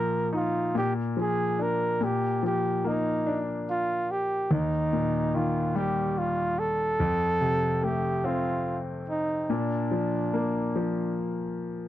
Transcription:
Already playing: grand piano A#2 F3, flugelhorn A#4
0.33 grand piano D#4, flugelhorn F4
0.75 grand piano A#2, flugelhorn G4
1.17 grand piano F3, flugelhorn G#4
1.59 grand piano D4, flugelhorn A#4
2.01 grand piano A#2, flugelhorn G4
2.43 grand piano F3, flugelhorn G4
2.84 grand piano A#3, flugelhorn D#4
3.27 grand piano D4
3.70 flugelhorn F4
4.11 flugelhorn G4
4.51 grand piano D#2, flugelhorn D#4
4.93 grand piano A#2
5.34 grand piano D#3, flugelhorn F4
5.75 grand piano G3, flugelhorn G4
6.18 flugelhorn F4
6.59 flugelhorn A4
7.00 grand piano F2
7.41 grand piano C3
7.83 grand piano A3, flugelhorn G4
8.24 grand piano C4, flugelhorn F4
9.09 flugelhorn D#4
9.50 grand piano A#2, flugelhorn D4
9.91 grand piano F3
10.34 grand piano A#3
10.76 grand piano F3

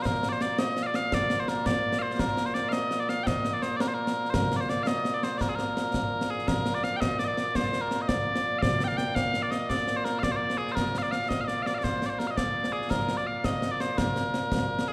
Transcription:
Already playing: bagpipes A#2 A#3
0.02 bagpipes A#4 C5, concert bass drum, snare
0.15 snare
0.23 snare
0.29 bagpipes C5 D5, snare
0.41 bagpipes D5, snare
0.59 bagpipes D#5, snare
0.77 snare
0.83 bagpipes D5 F5
0.94 bagpipes F5, snare
1.12 bagpipes D5, concert bass drum, snare
1.30 snare
1.40 bagpipes C5
1.48 bagpipes A#4, snare
1.66 bagpipes D5, concert bass drum, snare
1.93 snare
1.99 bagpipes C5 F5
2.10 bagpipes C5, snare
2.19 bagpipes A#4, concert bass drum, snare
2.28 snare
2.37 snare
2.46 bagpipes C5, snare
2.54 bagpipes D5, snare
2.69 bagpipes D#5 F5
2.73 snare
2.91 snare
3.00 bagpipes D5
3.09 bagpipes F5, snare
3.24 bagpipes D#5 G5, concert bass drum, snare
3.45 snare
3.53 bagpipes D5
3.62 bagpipes C5, snare
3.76 bagpipes D5
3.80 bagpipes A#4, snare
3.88 bagpipes C5
3.94 bagpipes A#4
4.07 snare
4.25 snare
4.30 bagpipes C5, concert bass drum, snare
4.35 bagpipes A#4
4.43 snare
4.52 snare
4.56 bagpipes C5 D5
4.61 snare
4.69 bagpipes D5, snare
4.83 bagpipes D#5 F5
4.87 snare
5.05 snare
5.14 bagpipes D5
5.23 bagpipes C5, snare
5.38 bagpipes A#4 D5, concert bass drum, snare
5.49 bagpipes G#4
5.55 bagpipes A#4, snare
5.77 snare
5.94 concert bass drum, snare
6.21 snare
6.30 bagpipes G#4
6.39 snare
6.48 bagpipes A#4, concert bass drum, snare
6.57 snare
6.66 snare
6.75 bagpipes D5, snare
6.84 bagpipes F5, snare
6.97 bagpipes D#5 G5
7.02 concert bass drum, snare
7.19 bagpipes D5, snare
7.25 bagpipes D5 D#5
7.37 bagpipes D5, snare
7.55 bagpipes C5, concert bass drum, snare
7.73 snare
7.81 bagpipes A#4
7.90 bagpipes A#4, snare
8.02 bagpipes D#5
8.08 bagpipes D5, concert bass drum, snare
8.36 snare
8.58 bagpipes D5 F5
8.63 concert bass drum, snare
8.71 snare
8.80 bagpipes G5, snare
8.88 bagpipes F5, snare
8.97 bagpipes G5, snare
9.15 bagpipes F5, concert bass drum, snare
9.34 snare
9.42 bagpipes D5
9.51 bagpipes D#5, snare
9.69 bagpipes D5, concert bass drum, snare
9.88 snare
9.97 bagpipes C5
10.05 bagpipes A#4, snare
10.19 bagpipes F5
10.23 bagpipes D5, concert bass drum, snare
10.32 bagpipes C5
10.36 bagpipes D5
10.50 snare
10.58 bagpipes G#4
10.68 snare
10.72 bagpipes A#4 C5
10.77 concert bass drum, snare
10.86 snare
10.95 bagpipes F5, snare
11.02 bagpipes D5, snare
11.11 bagpipes F5, snare
11.29 bagpipes D#5, concert bass drum, snare
11.41 bagpipes D#5 F5
11.48 bagpipes D5, snare
11.62 bagpipes D5 F5
11.66 snare
11.74 bagpipes D5 F5
11.84 bagpipes C5, concert bass drum, snare
12.02 bagpipes D5, snare
12.09 bagpipes C5
12.19 bagpipes A#4, snare
12.27 bagpipes D#5 F5
12.37 bagpipes D5, concert bass drum, snare
12.64 snare
12.72 bagpipes G#4
12.82 snare
12.90 bagpipes A#4, concert bass drum, snare
13.00 snare
13.09 snare
13.17 bagpipes D5, snare
13.27 bagpipes F5
13.38 bagpipes F5
13.44 bagpipes D#5, concert bass drum, snare
13.62 snare
13.71 bagpipes D5
13.80 bagpipes C5, snare
13.98 bagpipes A#4, concert bass drum, snare
14.16 snare
14.34 snare
14.52 concert bass drum, snare
14.79 snare
14.88 bagpipes G#4

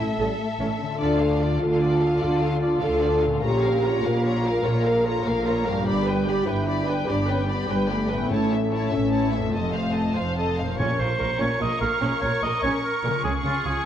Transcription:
Already playing: harp A2 A3 E4 A4, french horn section A3, violin section A4 E5
0.18 double bass section A1, cello section A2, french horn section G3, viola section A4
0.38 french horn section A3
0.59 double bass section A1, cello section A2, viola section C#4
0.79 harp D3, french horn section C#4
0.86 harp A3 F4
0.95 harp A4, violin section D5
0.99 double bass section D2, cello section D3, french horn section D4, viola section F4, violin section A4
1.18 violin section F4 F5, viola section A4
1.39 viola section F4, violin section A4 D5
1.60 double bass section D2, cello section D3, french horn section F4, violin section F4 F5, viola section A4
1.80 viola section F4, violin section D5
1.85 violin section A4
1.99 violin section F4 F5, viola section A4
2.20 double bass section D2, cello section D3, viola section F4, french horn section F4, violin section A4 D5
2.40 violin section F4 F5, viola section A4
2.60 viola section F4, violin section A4 D5
2.80 double bass section D2, cello section D3, viola section A4, french horn section A4, violin section F5
2.84 violin section F4
3.00 viola section F4, violin section A4 D5
3.21 harp A#2, violin section F4 F5, viola section A4
3.29 harp C#4
3.34 harp F4
3.38 harp A#4, violin section A#5
3.43 double bass section A#1, cello section A#2, viola section F4, french horn section G4, violin section C#5
3.62 viola section A#4, violin section A#4 F5
3.83 viola section F4, violin section C#5 A#5
4.03 double bass section A#1, cello section A#2, french horn section F4, violin section A#4 F5, viola section A#4
4.23 viola section F4, violin section C#5 A#5
4.44 viola section A#4, violin section A#4 F5
4.64 double bass section A#1, cello section A#2, viola section F4, french horn section A#4, violin section C#5 A#5
4.85 viola section A#4, violin section A#4 F5
5.04 viola section F4, french horn section A4, violin section C#5 A#5
5.25 double bass section A#1, cello section A#2, french horn section A#3, viola section A#4, violin section A#4 F5
5.46 viola section F4, violin section C#5 A#5
5.65 harp G2, french horn section G3, viola section A#4, violin section A#4 F5
5.72 harp D4
5.76 harp G4
5.81 harp B4
5.86 double bass section G1, cello section G2, viola section G4, violin section D5 B5
6.05 viola section B4, violin section B4 G5
6.27 french horn section G4, viola section G4, violin section D5 B5
6.46 double bass section G1, cello section G2, french horn section E4, viola section B4, violin section B4 G5
6.67 viola section G4, violin section D5 B5
6.87 french horn section D4, viola section B4, violin section B4 G5
7.07 double bass section G1, cello section G2, french horn section D4, viola section G4, violin section D5 B5
7.28 french horn section C#4, viola section B4, violin section B4 G5
7.47 french horn section B3, viola section G4, violin section D5 B5
7.69 double bass section G1, cello section G2, french horn section G3, violin section B4 G5, viola section B4
7.87 french horn section A3, viola section G4, violin section D5 B5
8.09 french horn section B3, violin section B4 G5, viola section B4
8.13 harp A2
8.17 harp C#4
8.22 harp E4
8.27 double bass section A1, cello section A2, french horn section C#4, harp C#5
8.31 timpani A2, viola section E4, violin section C#5 A5
8.52 viola section A4, violin section E5
8.71 french horn section A3, viola section E4, violin section C#5 A5
8.91 double bass section A1, cello section A2, french horn section C#4, viola section A4, violin section E5
9.11 viola section E4, violin section C#5 A5
9.32 french horn section A3, viola section A4, violin section E5
9.36 harp F2
9.41 harp D#4
9.46 harp F4
9.50 cello section F2, harp C5, violin section D#5 A5
9.55 double bass section F1, french horn section A3, viola section A4
9.73 viola section C5, violin section F5
9.93 violin section D#5 A5
9.97 viola section A4
10.14 double bass section F1, cello section F2, viola section C5, violin section F5
10.36 viola section A4, violin section D#5 A5
10.58 harp A#2, viola section C5, violin section F5
10.65 harp A#3
10.70 harp F4
10.74 harp A#4, violin section A#4 C#6
10.78 double bass section A#1, cello section A#2, timpani A#2, viola section C#4, cor anglais C#5
10.99 double bass section A#1, cello section A#2, viola section F4, cor anglais C5
11.20 double bass section A#1, cello section A#2, viola section A#4
11.40 double bass section A#1, cello section A#2, viola section C#4, cor anglais C#5
11.60 double bass section A#1, cello section A#2, viola section F4, cor anglais D#5
11.81 double bass section A#1, cello section A#2, viola section A#4, cor anglais F5
12.01 double bass section A#1, cello section A#2, viola section C#4
12.21 double bass section A#1, cello section A#2, viola section F4, cor anglais C#5
12.42 double bass section A#1, cello section A#2, viola section A#4, cor anglais D#5
12.63 double bass section A#1, cello section A#2, viola section C#4, cor anglais C#5
12.83 cor anglais A#4
13.03 double bass section A#1, cello section A#2, harp C#3, viola section A#4
13.10 harp F3
13.15 harp F4
13.19 harp G#4
13.24 double bass section C#2, cello section C#3, viola section G#3, violin section G#4, cor anglais G#4
13.44 double bass section C#2, cello section C#3, viola section C#4, cor anglais F4
13.64 double bass section C#2, cello section C#3, viola section F4, cor anglais G#4

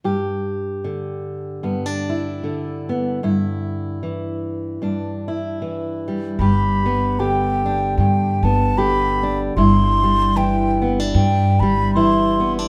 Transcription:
0.04 steel-string acoustic guitar G2 G4
0.84 steel-string acoustic guitar D3
1.63 steel-string acoustic guitar G2 B3
1.86 steel-string acoustic guitar D4
2.09 steel-string acoustic guitar E4
2.44 steel-string acoustic guitar D3
2.89 steel-string acoustic guitar B3
3.23 steel-string acoustic guitar G2 E4
4.03 steel-string acoustic guitar E3
4.82 steel-string acoustic guitar G2 D4
5.28 steel-string acoustic guitar E4
5.62 steel-string acoustic guitar E3
6.08 steel-string acoustic guitar G3
6.39 upright bass G1, steel-string acoustic guitar G2 G4, flute B5
6.86 steel-string acoustic guitar B3
7.19 steel-string acoustic guitar D3 G4, flute G5
7.66 steel-string acoustic guitar D4
7.98 upright bass G2, steel-string acoustic guitar G2, flute G5
8.43 upright bass G1, steel-string acoustic guitar B3, flute A5
8.78 steel-string acoustic guitar D3 G4, flute B5
9.23 steel-string acoustic guitar D4
9.57 upright bass G1, steel-string acoustic guitar G2 E4, flute C6
10.03 steel-string acoustic guitar G3
10.36 steel-string acoustic guitar E3 E4, flute G5
10.82 steel-string acoustic guitar B3
11.00 steel-string acoustic guitar D4
11.14 upright bass G2, steel-string acoustic guitar G2, flute G5
11.60 upright bass G1, steel-string acoustic guitar G3, flute B5
11.94 steel-string acoustic guitar E3 E4, flute C6
12.40 steel-string acoustic guitar B3
12.59 steel-string acoustic guitar D4

